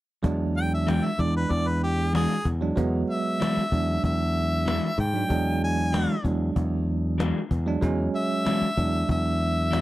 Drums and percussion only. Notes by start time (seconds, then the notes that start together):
0.24 cajon bass
0.88 cajon slap
1.19 cajon bass
1.50 cajon bass, cajon slap
2.15 cajon slap
2.45 cajon bass
2.77 cajon bass
3.09 cajon slap
3.42 cajon slap
3.72 cajon bass
4.04 cajon bass
4.68 cajon slap
4.98 cajon bass
5.30 cajon bass
5.94 cajon slap
6.25 cajon bass
6.56 cajon bass, cajon slap
6.87 cajon slap
7.20 cajon slap
7.51 cajon bass
7.82 cajon bass
8.14 cajon slap
8.46 cajon slap
8.77 cajon bass
9.09 cajon bass
9.41 cajon slap
9.73 cajon slap